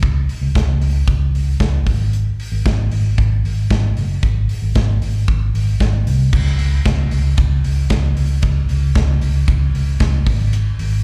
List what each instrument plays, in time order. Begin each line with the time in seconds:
0.03 fingered electric bass C#2, kick, closed hi-hat
0.29 open hi-hat
0.41 fingered electric bass C#2
0.55 fingered electric bass C#2, kick, snare, closed hi-hat
0.82 fingered electric bass C#2, open hi-hat
1.08 fingered electric bass C#2, kick, closed hi-hat
1.34 fingered electric bass C#2, open hi-hat
1.60 fingered electric bass C#2, kick, snare, closed hi-hat
1.87 fingered electric bass G#1, kick, open hi-hat
2.13 closed hi-hat
2.40 open hi-hat
2.52 fingered electric bass G#1
2.66 fingered electric bass G#1, kick, snare
2.91 fingered electric bass G#1, open hi-hat
3.18 fingered electric bass G#1, kick, closed hi-hat
3.44 fingered electric bass G#1, open hi-hat
3.70 fingered electric bass G#1, kick, snare
3.97 fingered electric bass F#1, open hi-hat
4.23 fingered electric bass G#1, kick, closed hi-hat
4.49 open hi-hat
4.62 fingered electric bass G#1
4.75 fingered electric bass G#1, kick, snare
5.02 fingered electric bass G#1, open hi-hat
5.28 fingered electric bass G#1, kick
5.54 fingered electric bass G#1, open hi-hat
5.80 fingered electric bass G#1, kick, snare, closed hi-hat
6.07 fingered electric bass C2, open hi-hat
6.33 fingered electric bass C#2, kick, crash
6.59 fingered electric bass C#2, open hi-hat
6.85 fingered electric bass C#2, kick, snare, hi-hat pedal, ride
7.11 fingered electric bass C#2, open hi-hat
7.37 fingered electric bass C#2, kick, hi-hat pedal, ride
7.64 fingered electric bass C#2, open hi-hat
7.90 fingered electric bass C#2, kick, snare, hi-hat pedal, ride
8.17 fingered electric bass C#2, open hi-hat
8.42 fingered electric bass C#2, kick, hi-hat pedal, ride
8.69 fingered electric bass C#2, open hi-hat
8.95 fingered electric bass C#2, kick, snare, hi-hat pedal, ride
9.21 fingered electric bass C#2, open hi-hat
9.48 fingered electric bass C#2, kick, hi-hat pedal, ride
9.75 fingered electric bass C#2, open hi-hat
10.00 fingered electric bass C#2, kick, snare, hi-hat pedal, ride
10.26 fingered electric bass G#1, kick, open hi-hat
10.53 hi-hat pedal, ride
10.79 fingered electric bass G#1, open hi-hat